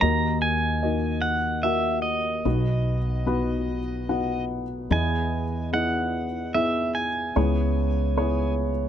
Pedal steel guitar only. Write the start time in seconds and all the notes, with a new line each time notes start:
0.01 A#5
0.42 G#5
1.22 F#5
1.63 E5
2.02 D#5
4.92 G#5
5.74 F#5
6.54 E5
6.95 G#5